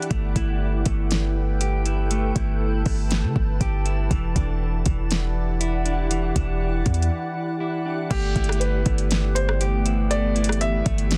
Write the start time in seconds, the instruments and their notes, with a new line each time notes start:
Already playing: clean electric guitar E3 D4 E4, ambient pad E4
0.02 closed hi-hat
0.10 808-style bass G1, clean electric guitar A3, ambient pad A4 B4 G5, kick, closed hi-hat
0.36 808-style bass G1, clean electric guitar E4, kick, closed hi-hat
0.85 808-style bass G1, clean electric guitar A3, kick, closed hi-hat
1.11 snare, closed hi-hat
1.61 clean electric guitar G4, closed hi-hat
1.86 clean electric guitar E4, closed hi-hat
2.11 clean electric guitar A3, ambient pad A5, closed hi-hat
2.35 808-style bass G1, clean electric guitar E4, kick, closed hi-hat
2.86 808-style bass G1, clean electric guitar A3, kick, open hi-hat
3.11 snare, closed hi-hat
3.23 808-style bass D3
3.36 808-style bass G1, kick
3.61 808-style bass G1, clean electric guitar G4, kick, closed hi-hat
3.86 clean electric guitar E4, closed hi-hat
4.11 808-style bass E1, clean electric guitar E3, ambient pad E4 G4 D5 F#5, kick, closed hi-hat
4.36 808-style bass E1, clean electric guitar D4, kick, closed hi-hat
4.86 808-style bass E1, clean electric guitar E3, kick, closed hi-hat
5.11 snare, closed hi-hat
5.61 clean electric guitar E4, closed hi-hat
5.85 clean electric guitar D4, closed hi-hat
6.11 clean electric guitar E3, closed hi-hat
6.36 808-style bass E1, clean electric guitar D4, kick, closed hi-hat
6.85 808-style bass E2, clean electric guitar E3, kick, closed hi-hat
6.94 closed hi-hat
7.02 closed hi-hat
7.60 clean electric guitar E4
7.86 clean electric guitar D4
8.10 808-style bass G1, ambient pad E3 A3 B3 G4, clean electric guitar A3, felt piano G4, kick, closed hi-hat, crash
8.36 808-style bass G1, clean electric guitar E4, kick, closed hi-hat
8.44 closed hi-hat
8.49 cross-stick, closed hi-hat
8.60 felt piano B4, closed hi-hat
8.85 808-style bass G1, clean electric guitar A3, kick, closed hi-hat
8.98 closed hi-hat
9.11 snare, closed hi-hat
9.35 felt piano C5, closed hi-hat
9.49 cross-stick
9.61 clean electric guitar G4, closed hi-hat
9.86 clean electric guitar E4, closed hi-hat
10.11 clean electric guitar A3, felt piano D5, closed hi-hat
10.35 clean electric guitar E4, closed hi-hat
10.44 closed hi-hat
10.49 cross-stick, closed hi-hat
10.61 felt piano E5, closed hi-hat
10.86 808-style bass G1, clean electric guitar A3, kick, closed hi-hat
10.98 closed hi-hat
11.11 snare, closed hi-hat